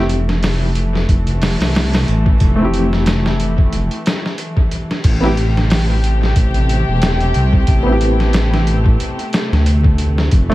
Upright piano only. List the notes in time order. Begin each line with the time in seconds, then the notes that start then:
2.56 A3 C4
2.62 E4 G4
5.20 B3 C4 E4
5.25 G4
7.83 B3 C4
7.89 E4 G4
10.50 A3 C4